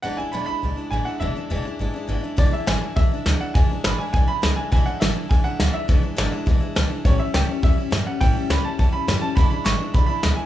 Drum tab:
HH |--------|--------|o-o-o-o-|o-o-o-o-|
SD |--------|--------|--o---o-|--o---o-|
BD |--------|--------|o---o---|o---o---|

HH |o-o-o-o-|o-o-o-o-|o-o-o-o-|o-o-o-o-|
SD |--o---o-|--o---o-|--o---o-|--o---o-|
BD |o---o---|o---o---|o---o---|o---o---|

HH |o-o-o-o-|
SD |--o---o-|
BD |o---o---|